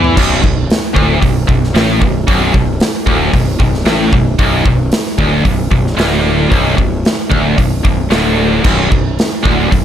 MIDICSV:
0, 0, Header, 1, 4, 480
1, 0, Start_track
1, 0, Key_signature, 2, "minor"
1, 0, Tempo, 530035
1, 149, Time_signature, 4, 2, 24, 8
1, 8917, End_track
2, 0, Start_track
2, 0, Title_t, "Distorted electric guitar"
2, 0, Program_c, 0, 30
2, 0, Note_on_c, 0, 52, 113
2, 137, Note_off_c, 0, 52, 0
2, 142, Note_on_c, 0, 35, 106
2, 373, Note_off_c, 0, 35, 0
2, 384, Note_on_c, 0, 35, 76
2, 576, Note_off_c, 0, 35, 0
2, 850, Note_on_c, 0, 38, 99
2, 1089, Note_off_c, 0, 38, 0
2, 1096, Note_on_c, 0, 35, 76
2, 1290, Note_off_c, 0, 35, 0
2, 1338, Note_on_c, 0, 35, 84
2, 1531, Note_off_c, 0, 35, 0
2, 1579, Note_on_c, 0, 45, 126
2, 1811, Note_off_c, 0, 45, 0
2, 1816, Note_on_c, 0, 35, 71
2, 2009, Note_off_c, 0, 35, 0
2, 2062, Note_on_c, 0, 35, 120
2, 2289, Note_off_c, 0, 35, 0
2, 2300, Note_on_c, 0, 35, 79
2, 2489, Note_off_c, 0, 35, 0
2, 2777, Note_on_c, 0, 38, 103
2, 3007, Note_off_c, 0, 38, 0
2, 3024, Note_on_c, 0, 35, 83
2, 3210, Note_off_c, 0, 35, 0
2, 3261, Note_on_c, 0, 35, 87
2, 3448, Note_off_c, 0, 35, 0
2, 3495, Note_on_c, 0, 45, 123
2, 3726, Note_off_c, 0, 45, 0
2, 3744, Note_on_c, 0, 35, 83
2, 3929, Note_off_c, 0, 35, 0
2, 3978, Note_on_c, 0, 35, 113
2, 4207, Note_off_c, 0, 35, 0
2, 4223, Note_on_c, 0, 35, 83
2, 4408, Note_off_c, 0, 35, 0
2, 4695, Note_on_c, 0, 38, 99
2, 4926, Note_off_c, 0, 38, 0
2, 4931, Note_on_c, 0, 35, 93
2, 5122, Note_off_c, 0, 35, 0
2, 5170, Note_on_c, 0, 35, 93
2, 5362, Note_off_c, 0, 35, 0
2, 5408, Note_on_c, 0, 38, 125
2, 5882, Note_off_c, 0, 38, 0
2, 5885, Note_on_c, 0, 35, 108
2, 6118, Note_off_c, 0, 35, 0
2, 6129, Note_on_c, 0, 35, 85
2, 6324, Note_off_c, 0, 35, 0
2, 6612, Note_on_c, 0, 38, 99
2, 6848, Note_off_c, 0, 38, 0
2, 6858, Note_on_c, 0, 35, 88
2, 7050, Note_off_c, 0, 35, 0
2, 7099, Note_on_c, 0, 35, 82
2, 7292, Note_off_c, 0, 35, 0
2, 7336, Note_on_c, 0, 38, 124
2, 7814, Note_off_c, 0, 38, 0
2, 7823, Note_on_c, 0, 35, 112
2, 8052, Note_off_c, 0, 35, 0
2, 8063, Note_on_c, 0, 35, 74
2, 8258, Note_off_c, 0, 35, 0
2, 8544, Note_on_c, 0, 38, 104
2, 8782, Note_off_c, 0, 38, 0
2, 8793, Note_on_c, 0, 35, 90
2, 8917, Note_off_c, 0, 35, 0
2, 8917, End_track
3, 0, Start_track
3, 0, Title_t, "Fingered electric bass"
3, 0, Program_c, 1, 33
3, 0, Note_on_c, 1, 40, 101
3, 113, Note_off_c, 1, 40, 0
3, 158, Note_on_c, 1, 23, 94
3, 376, Note_off_c, 1, 23, 0
3, 394, Note_on_c, 1, 23, 87
3, 613, Note_off_c, 1, 23, 0
3, 868, Note_on_c, 1, 26, 106
3, 1088, Note_off_c, 1, 26, 0
3, 1106, Note_on_c, 1, 23, 82
3, 1326, Note_off_c, 1, 23, 0
3, 1344, Note_on_c, 1, 23, 89
3, 1565, Note_off_c, 1, 23, 0
3, 1589, Note_on_c, 1, 33, 108
3, 1807, Note_off_c, 1, 33, 0
3, 1828, Note_on_c, 1, 23, 86
3, 2046, Note_off_c, 1, 23, 0
3, 2066, Note_on_c, 1, 23, 92
3, 2284, Note_off_c, 1, 23, 0
3, 2304, Note_on_c, 1, 23, 92
3, 2523, Note_off_c, 1, 23, 0
3, 2779, Note_on_c, 1, 26, 108
3, 2999, Note_off_c, 1, 26, 0
3, 3021, Note_on_c, 1, 23, 87
3, 3240, Note_off_c, 1, 23, 0
3, 3258, Note_on_c, 1, 23, 83
3, 3478, Note_off_c, 1, 23, 0
3, 3489, Note_on_c, 1, 33, 91
3, 3713, Note_off_c, 1, 33, 0
3, 3736, Note_on_c, 1, 23, 93
3, 3956, Note_off_c, 1, 23, 0
3, 3974, Note_on_c, 1, 23, 95
3, 4195, Note_off_c, 1, 23, 0
3, 4214, Note_on_c, 1, 23, 83
3, 4435, Note_off_c, 1, 23, 0
3, 4695, Note_on_c, 1, 26, 105
3, 4916, Note_off_c, 1, 26, 0
3, 4934, Note_on_c, 1, 23, 78
3, 5156, Note_off_c, 1, 23, 0
3, 5173, Note_on_c, 1, 23, 85
3, 5395, Note_off_c, 1, 23, 0
3, 5412, Note_on_c, 1, 26, 102
3, 5859, Note_off_c, 1, 26, 0
3, 5901, Note_on_c, 1, 23, 93
3, 6121, Note_off_c, 1, 23, 0
3, 6138, Note_on_c, 1, 23, 89
3, 6360, Note_off_c, 1, 23, 0
3, 6623, Note_on_c, 1, 26, 106
3, 6844, Note_off_c, 1, 26, 0
3, 6864, Note_on_c, 1, 23, 79
3, 7085, Note_off_c, 1, 23, 0
3, 7107, Note_on_c, 1, 23, 88
3, 7328, Note_off_c, 1, 23, 0
3, 7340, Note_on_c, 1, 26, 97
3, 7789, Note_off_c, 1, 26, 0
3, 7831, Note_on_c, 1, 23, 92
3, 8052, Note_off_c, 1, 23, 0
3, 8073, Note_on_c, 1, 23, 85
3, 8295, Note_off_c, 1, 23, 0
3, 8560, Note_on_c, 1, 26, 96
3, 8781, Note_off_c, 1, 26, 0
3, 8803, Note_on_c, 1, 23, 71
3, 8917, Note_off_c, 1, 23, 0
3, 8917, End_track
4, 0, Start_track
4, 0, Title_t, "Drums"
4, 39, Note_on_c, 9, 43, 86
4, 129, Note_off_c, 9, 43, 0
4, 156, Note_on_c, 9, 36, 105
4, 160, Note_on_c, 9, 49, 122
4, 247, Note_off_c, 9, 36, 0
4, 251, Note_off_c, 9, 49, 0
4, 396, Note_on_c, 9, 36, 91
4, 486, Note_off_c, 9, 36, 0
4, 637, Note_on_c, 9, 46, 65
4, 648, Note_on_c, 9, 38, 127
4, 728, Note_off_c, 9, 46, 0
4, 738, Note_off_c, 9, 38, 0
4, 873, Note_on_c, 9, 36, 107
4, 963, Note_off_c, 9, 36, 0
4, 1109, Note_on_c, 9, 36, 85
4, 1109, Note_on_c, 9, 46, 57
4, 1199, Note_off_c, 9, 36, 0
4, 1199, Note_off_c, 9, 46, 0
4, 1348, Note_on_c, 9, 36, 98
4, 1438, Note_off_c, 9, 36, 0
4, 1483, Note_on_c, 9, 38, 26
4, 1574, Note_off_c, 9, 38, 0
4, 1586, Note_on_c, 9, 46, 70
4, 1597, Note_on_c, 9, 38, 117
4, 1677, Note_off_c, 9, 46, 0
4, 1688, Note_off_c, 9, 38, 0
4, 1826, Note_on_c, 9, 36, 92
4, 1917, Note_off_c, 9, 36, 0
4, 2065, Note_on_c, 9, 36, 103
4, 2065, Note_on_c, 9, 46, 60
4, 2156, Note_off_c, 9, 36, 0
4, 2156, Note_off_c, 9, 46, 0
4, 2303, Note_on_c, 9, 36, 96
4, 2393, Note_off_c, 9, 36, 0
4, 2538, Note_on_c, 9, 46, 79
4, 2548, Note_on_c, 9, 38, 127
4, 2628, Note_off_c, 9, 46, 0
4, 2639, Note_off_c, 9, 38, 0
4, 2780, Note_on_c, 9, 36, 96
4, 2871, Note_off_c, 9, 36, 0
4, 3021, Note_on_c, 9, 36, 93
4, 3025, Note_on_c, 9, 46, 72
4, 3111, Note_off_c, 9, 36, 0
4, 3115, Note_off_c, 9, 46, 0
4, 3259, Note_on_c, 9, 36, 89
4, 3349, Note_off_c, 9, 36, 0
4, 3389, Note_on_c, 9, 38, 30
4, 3480, Note_off_c, 9, 38, 0
4, 3490, Note_on_c, 9, 46, 64
4, 3501, Note_on_c, 9, 38, 119
4, 3580, Note_off_c, 9, 46, 0
4, 3591, Note_off_c, 9, 38, 0
4, 3738, Note_on_c, 9, 36, 96
4, 3828, Note_off_c, 9, 36, 0
4, 3972, Note_on_c, 9, 46, 62
4, 3976, Note_on_c, 9, 36, 98
4, 4062, Note_off_c, 9, 46, 0
4, 4067, Note_off_c, 9, 36, 0
4, 4216, Note_on_c, 9, 36, 93
4, 4307, Note_off_c, 9, 36, 0
4, 4452, Note_on_c, 9, 46, 68
4, 4463, Note_on_c, 9, 38, 127
4, 4542, Note_off_c, 9, 46, 0
4, 4553, Note_off_c, 9, 38, 0
4, 4585, Note_on_c, 9, 38, 37
4, 4675, Note_off_c, 9, 38, 0
4, 4696, Note_on_c, 9, 36, 98
4, 4787, Note_off_c, 9, 36, 0
4, 4937, Note_on_c, 9, 36, 91
4, 4937, Note_on_c, 9, 46, 61
4, 5027, Note_off_c, 9, 36, 0
4, 5028, Note_off_c, 9, 46, 0
4, 5176, Note_on_c, 9, 36, 80
4, 5266, Note_off_c, 9, 36, 0
4, 5313, Note_on_c, 9, 38, 30
4, 5404, Note_off_c, 9, 38, 0
4, 5421, Note_on_c, 9, 46, 68
4, 5432, Note_on_c, 9, 38, 127
4, 5512, Note_off_c, 9, 46, 0
4, 5522, Note_off_c, 9, 38, 0
4, 5902, Note_on_c, 9, 36, 102
4, 5906, Note_on_c, 9, 46, 55
4, 5993, Note_off_c, 9, 36, 0
4, 5997, Note_off_c, 9, 46, 0
4, 6142, Note_on_c, 9, 36, 90
4, 6233, Note_off_c, 9, 36, 0
4, 6386, Note_on_c, 9, 46, 72
4, 6397, Note_on_c, 9, 38, 127
4, 6476, Note_off_c, 9, 46, 0
4, 6487, Note_off_c, 9, 38, 0
4, 6625, Note_on_c, 9, 36, 106
4, 6715, Note_off_c, 9, 36, 0
4, 6866, Note_on_c, 9, 36, 90
4, 6869, Note_on_c, 9, 46, 66
4, 6957, Note_off_c, 9, 36, 0
4, 6960, Note_off_c, 9, 46, 0
4, 7108, Note_on_c, 9, 36, 95
4, 7198, Note_off_c, 9, 36, 0
4, 7342, Note_on_c, 9, 46, 67
4, 7353, Note_on_c, 9, 38, 122
4, 7432, Note_off_c, 9, 46, 0
4, 7443, Note_off_c, 9, 38, 0
4, 7827, Note_on_c, 9, 49, 107
4, 7832, Note_on_c, 9, 36, 112
4, 7917, Note_off_c, 9, 49, 0
4, 7922, Note_off_c, 9, 36, 0
4, 8076, Note_on_c, 9, 36, 102
4, 8167, Note_off_c, 9, 36, 0
4, 8319, Note_on_c, 9, 46, 71
4, 8330, Note_on_c, 9, 38, 121
4, 8410, Note_off_c, 9, 46, 0
4, 8421, Note_off_c, 9, 38, 0
4, 8563, Note_on_c, 9, 36, 109
4, 8653, Note_off_c, 9, 36, 0
4, 8805, Note_on_c, 9, 36, 95
4, 8811, Note_on_c, 9, 46, 58
4, 8896, Note_off_c, 9, 36, 0
4, 8902, Note_off_c, 9, 46, 0
4, 8917, End_track
0, 0, End_of_file